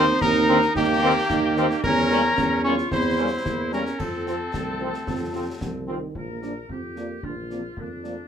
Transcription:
0.00 0.13 D#2 loud
0.00 0.20 C4 loud
0.00 0.18 D#4 loud
0.00 0.18 C5 loud
0.00 0.23 C6 loud
0.21 0.67 D#2 loud
0.21 0.47 C4 loud
0.21 0.72 D#4 loud
0.21 0.72 A#4 loud
0.21 0.75 A#5 loud
0.21 concert bass drum medium
0.21 snare medium
0.48 0.59 D#3 medium
0.48 0.58 A#3 loud
0.48 0.58 A#3 medium
0.48 0.58 C4 loud
0.48 0.58 C4 medium
0.48 0.61 D4 loud
0.62 snare medium
0.75 1.20 D#2 loud
0.75 1.80 A#3 loud
0.75 1.01 D#4 loud
0.75 1.80 G4 loud
0.75 1.85 G5 loud
0.75 concert bass drum medium
0.75 snare medium
1.03 1.12 D#3 medium
1.03 1.12 A#3 loud
1.03 1.13 A#3 medium
1.03 1.12 C4 medium
1.03 1.12 C4 loud
1.03 1.15 C4 loud
1.30 1.75 D#2 medium
1.30 1.80 D#4 loud
1.30 concert bass drum medium
1.30 snare medium
1.56 1.66 D#3 medium
1.56 1.66 A#3 medium
1.56 1.66 C4 medium
1.56 snare medium
1.71 snare medium
1.83 2.28 E2 loud
1.83 2.61 C#4 loud
1.83 2.34 C#4 loud
1.83 2.61 A#4 loud
1.83 2.64 A#5 loud
1.83 concert bass drum medium
1.83 crash soft
2.10 2.20 G3 medium
2.10 2.20 A#3 medium
2.10 2.20 C#4 medium
2.10 snare medium
2.37 2.82 E2 medium
2.37 2.88 C#4 medium
2.37 concert bass drum medium
2.37 snare medium
2.64 2.74 G3 medium
2.64 2.74 A#3 medium
2.64 2.74 C#4 medium
2.64 2.92 F4 loud
2.64 2.76 C#5 loud
2.64 2.89 C#6 loud
2.78 snare medium
2.91 3.37 E2 loud
2.91 3.24 C4 medium
2.91 3.69 E4 loud
2.91 3.69 C5 loud
2.91 3.45 C6 loud
2.91 concert bass drum medium
2.91 snare medium
3.18 3.27 G3 medium
3.18 3.29 G3 medium
3.18 3.29 A#3 medium
3.18 3.28 C#4 medium
3.46 3.91 E2 medium
3.46 3.75 A#3 medium
3.46 concert bass drum medium
3.46 snare medium
3.72 3.82 G3 medium
3.72 3.82 A#3 medium
3.72 3.99 C#4 medium
3.72 3.82 C#4 medium
3.72 4.01 C#4 medium
3.72 4.01 A#4 medium
3.72 4.01 A#5 medium
3.72 snare medium
3.86 snare medium
3.99 4.45 F2 medium
3.99 5.84 C4 medium
3.99 4.48 C4 medium
3.99 5.88 A4 medium
3.99 5.88 A5 medium
3.99 concert bass drum medium
3.99 crash soft
4.26 4.36 F3 medium
4.26 4.37 F3 medium
4.26 4.36 C4 medium
4.26 4.37 C4 medium
4.26 snare medium
4.53 4.94 C2 medium
4.53 5.04 A3 medium
4.53 concert bass drum medium
4.53 snare medium
4.80 4.90 F3 medium
4.80 4.91 F3 medium
4.80 4.90 C4 medium
4.80 4.91 C4 medium
4.94 snare medium
5.07 5.53 F2 medium
5.07 5.33 C4 medium
5.07 concert bass drum medium
5.07 snare medium
5.34 5.43 F3 medium
5.34 5.44 F3 medium
5.34 5.44 C4 medium
5.34 5.47 C4 medium
5.34 5.44 C4 medium
5.61 6.07 C2 medium
5.61 5.87 F3 medium
5.61 concert bass drum medium
5.61 snare medium
5.88 6.17 D#3 medium
5.88 5.97 F3 medium
5.88 5.98 C4 medium
6.15 6.61 A#1 soft
6.15 6.32 F3 medium
6.15 6.66 A#4 soft
6.15 concert bass drum medium
6.31 6.42 A#3 medium
6.42 6.52 F3 soft
6.42 6.52 A#3 soft
6.42 6.52 D4 soft
6.42 6.55 D4 medium
6.42 6.52 D5 soft
6.42 snare soft
6.69 7.15 F2 soft
6.69 6.81 C4 medium
6.69 7.24 G4 medium
6.69 concert bass drum medium
6.96 7.06 F3 soft
6.96 7.06 A#3 soft
6.96 7.21 A#3 medium
6.96 7.06 D4 soft
6.96 7.07 D5 soft
6.96 snare soft
7.23 7.69 A#1 soft
7.23 7.36 D4 medium
7.23 7.77 F4 soft
7.23 concert bass drum medium
7.50 7.60 F3 soft
7.50 7.60 A#3 soft
7.50 7.63 C4 medium
7.50 7.60 D4 soft
7.50 7.61 D5 soft
7.50 snare soft
7.77 8.23 F2 soft
7.77 7.90 A#3 medium
7.77 8.28 D4 soft
7.77 concert bass drum medium
8.03 8.13 F3 soft
8.03 8.17 A3 medium
8.03 8.13 A#3 soft
8.03 8.13 D4 soft
8.03 8.14 D5 soft
8.03 snare soft

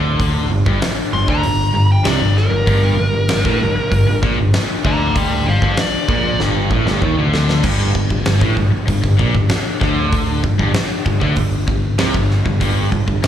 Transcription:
0.00 0.47 D2 loud
0.00 0.50 D3 loud
0.20 kick loud
0.20 open hi-hat medium
0.50 0.65 G1 medium
0.50 0.66 G2 medium
0.66 0.81 G1 loud
0.66 0.81 G2 loud
0.66 kick loud
0.82 muted picked electric bass stroke soft
0.82 muted overdriven electric guitar stroke medium
0.82 snare loud
0.82 open hi-hat medium
1.13 1.27 G1 medium
1.13 1.29 G2 medium
1.13 1.28 C6 loud
1.28 1.43 D2 loud
1.28 1.43 D3 loud
1.28 1.89 A#5 loud
1.28 kick loud
1.43 1.72 G1 medium
1.43 1.69 G2 medium
1.43 open hi-hat medium
1.74 2.03 G1 medium
1.74 2.00 G2 medium
1.92 2.06 G5 medium
2.05 2.20 C2 loud
2.05 2.20 C3 loud
2.05 2.37 D5 loud
2.05 snare loud
2.05 open hi-hat medium
2.20 2.49 G1 medium
2.20 2.46 G2 medium
2.37 4.19 A#4 loud
2.37 snare soft
2.51 2.67 G1 medium
2.51 2.65 G2 medium
2.67 2.96 G1 loud
2.67 2.97 G2 loud
2.67 kick loud
2.67 open hi-hat medium
2.99 3.14 G1 medium
2.99 3.12 G2 medium
3.14 3.29 G1 medium
3.14 3.29 G2 medium
3.29 3.45 G1 medium
3.29 3.45 G2 medium
3.29 snare loud
3.29 open hi-hat medium
3.45 3.60 A1 loud
3.45 3.60 A2 loud
3.45 kick loud
3.61 3.76 G1 medium
3.61 3.75 G2 medium
3.76 muted overdriven electric guitar stroke medium
3.76 muted picked electric bass stroke soft
3.92 4.06 G1 medium
3.92 4.06 G2 medium
3.92 kick medium
3.92 open hi-hat medium
4.07 4.23 G1 medium
4.07 4.23 G2 medium
4.23 4.38 A#1 medium
4.23 4.38 A#2 loud
4.23 kick loud
4.39 4.53 G1 medium
4.39 4.54 G2 medium
4.53 muted overdriven electric guitar stroke medium
4.53 snare loud
4.53 open hi-hat medium
4.85 5.43 D2 loud
4.85 5.46 D3 loud
4.85 5.17 F5 loud
4.85 5.16 A#5 loud
4.85 kick loud
5.16 5.45 D5 medium
5.16 5.47 G5 loud
5.16 kick loud
5.16 open hi-hat medium
5.47 5.61 G1 medium
5.47 5.62 G2 medium
5.47 5.77 C5 medium
5.47 5.78 F5 loud
5.62 5.77 G1 loud
5.62 5.78 G2 loud
5.62 kick loud
5.77 6.39 D5 loud
5.77 muted overdriven electric guitar stroke medium
5.77 snare loud
5.77 open hi-hat medium
6.08 6.37 A#1 loud
6.08 6.40 A#2 loud
6.08 kick loud
6.39 6.68 G1 loud
6.39 6.71 G2 loud
6.39 snare medium
6.70 6.85 A1 loud
6.70 6.87 A2 loud
6.70 kick medium
6.85 7.00 G1 loud
6.85 7.02 G2 loud
6.85 snare medium
7.02 7.17 D#2 loud
7.02 7.17 D#3 loud
7.02 kick medium
7.17 7.61 D2 medium
7.17 7.64 D3 loud
7.34 snare medium
7.49 snare medium
7.63 7.93 G1 loud
7.63 7.93 G2 loud
7.63 kick loud
7.63 crash loud
7.95 8.09 G1 medium
7.95 8.09 G2 medium
7.95 kick medium
8.10 8.25 G1 medium
8.10 8.23 G2 medium
8.10 kick medium
8.24 8.40 G1 medium
8.24 8.41 G2 medium
8.24 snare loud
8.24 open hi-hat medium
8.40 8.56 A1 loud
8.40 8.55 A2 medium
8.40 kick loud
8.55 8.72 G1 medium
8.55 8.70 G2 medium
8.55 kick medium
8.71 muted overdriven electric guitar stroke medium
8.71 muted picked electric bass stroke soft
8.87 9.03 G1 medium
8.87 9.01 G2 medium
8.87 kick loud
8.87 open hi-hat medium
9.03 9.18 G1 medium
9.03 9.19 G2 medium
9.03 kick medium
9.18 9.34 A#1 medium
9.18 9.33 A#2 loud
9.18 kick loud
9.34 9.49 G1 medium
9.34 9.49 G2 medium
9.34 kick medium
9.49 muted overdriven electric guitar stroke medium
9.49 muted picked electric bass stroke soft
9.49 snare loud
9.49 open hi-hat medium
9.81 10.39 D2 medium
9.81 10.42 D3 loud
9.81 kick loud
9.81 snare soft
10.12 kick loud
10.12 open hi-hat medium
10.43 10.58 G1 medium
10.43 10.57 G2 medium
10.43 kick medium
10.59 10.74 G1 loud
10.59 10.73 G2 loud
10.59 kick medium
10.74 muted overdriven electric guitar stroke medium
10.74 muted picked electric bass stroke soft
10.74 snare loud
10.74 open hi-hat medium
11.06 11.20 G1 medium
11.06 11.21 G2 medium
11.06 kick loud
11.21 11.36 D2 loud
11.21 11.36 D3 loud
11.21 kick medium
11.36 11.65 G1 medium
11.36 11.61 G2 medium
11.36 kick loud
11.36 open hi-hat medium
11.68 11.97 G1 medium
11.68 11.93 G2 medium
11.68 kick loud
11.98 12.13 C2 medium
11.98 12.14 C3 loud
11.98 snare loud
11.98 open hi-hat medium
12.14 12.43 G1 medium
12.14 12.40 G2 medium
12.14 kick medium
12.30 snare soft
12.46 12.60 G1 medium
12.46 12.59 G2 medium
12.46 kick medium
12.61 12.90 G1 loud
12.61 12.91 G2 loud
12.61 kick loud
12.61 open hi-hat medium
12.92 13.07 G1 medium
12.92 13.06 G2 medium
12.92 kick medium
13.07 13.22 G1 medium
13.07 13.22 G2 medium
13.07 kick medium
13.23 13.27 G1 medium
13.23 13.27 G2 medium
13.23 snare loud
13.23 open hi-hat medium

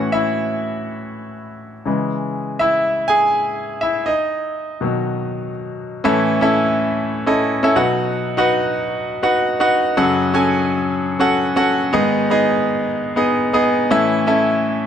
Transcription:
0.00 1.82 A2 soft
0.00 1.82 E3 soft
0.00 1.83 C#4 medium
0.00 0.11 F#4 medium
0.00 0.10 F#5 medium
0.12 1.82 E4 medium
0.12 1.81 E5 medium
1.86 2.56 C#3 soft
1.86 2.56 E3 soft
1.86 2.57 G#3 medium
2.59 3.06 E4 medium
2.59 3.10 E5 medium
3.08 3.79 G#4 medium
3.08 3.85 G#5 loud
3.81 4.06 E4 medium
3.81 4.07 E5 medium
4.06 5.51 D#4 medium
4.06 5.50 D#5 medium
4.81 5.14 B2 medium
4.81 5.14 D#3 soft
4.81 5.14 F#3 medium
6.04 7.73 A2 medium
6.04 7.72 E3 medium
6.04 6.33 C#4 loud
6.04 6.33 E4 medium
6.04 6.33 A4 medium
6.04 6.34 E5 loud
6.41 7.09 C#4 medium
6.41 7.09 E4 medium
6.41 7.09 A4 medium
6.41 7.09 E5 loud
7.26 7.56 C#4 medium
7.26 7.56 E4 medium
7.26 7.56 A4 medium
7.26 7.56 D#5 medium
7.63 7.76 C#4 medium
7.63 7.76 E4 medium
7.63 7.76 A4 medium
7.63 7.76 E5 loud
7.75 9.69 B2 medium
7.75 9.69 F#3 medium
7.75 8.25 D#4 medium
7.75 8.25 F#4 medium
7.75 8.25 B4 medium
7.75 8.25 F#5 medium
8.37 9.05 D#4 medium
8.37 9.05 F#4 medium
8.37 9.05 B4 medium
8.37 9.06 F#5 medium
9.23 9.52 D#4 medium
9.23 9.52 F#4 medium
9.23 9.52 B4 medium
9.23 9.53 F#5 medium
9.60 9.89 D#4 medium
9.60 9.89 F#4 medium
9.60 9.90 B4 medium
9.60 9.90 F#5 loud
9.97 11.90 F#2 medium
9.97 11.90 C#3 medium
9.97 10.26 C#4 loud
9.97 10.26 F#4 medium
9.97 10.26 A4 medium
9.97 10.27 F#5 loud
10.34 11.02 C#4 medium
10.34 11.02 F#4 medium
10.34 11.02 A4 medium
10.34 11.02 G#5 loud
11.19 11.49 C#4 medium
11.19 11.49 F#4 medium
11.19 11.49 A4 medium
11.19 11.49 F#5 loud
11.56 11.86 C#4 medium
11.56 11.86 F#4 medium
11.56 11.86 A4 medium
11.56 11.86 F#5 loud
11.93 13.86 G#2 medium
11.93 13.86 D#3 medium
11.93 12.22 B3 medium
11.93 12.23 D#4 medium
11.93 12.23 G#4 medium
11.93 12.23 D#5 loud
12.30 12.98 B3 medium
12.30 12.98 D#4 medium
12.30 12.99 G#4 medium
12.30 12.99 D#5 loud
13.16 13.45 B3 medium
13.16 13.46 D#4 medium
13.16 13.46 G#4 medium
13.16 13.46 D#5 medium
13.53 13.83 B3 medium
13.53 13.82 D#4 medium
13.53 13.83 G#4 medium
13.53 13.83 D#5 medium
13.90 14.87 A2 medium
13.90 14.87 E3 medium
13.90 14.20 C#4 medium
13.90 14.20 E4 medium
13.90 14.20 A4 medium
13.90 14.20 E5 loud
14.27 14.87 C#4 medium
14.27 14.87 E4 medium
14.27 14.87 A4 medium
14.27 14.87 E5 medium

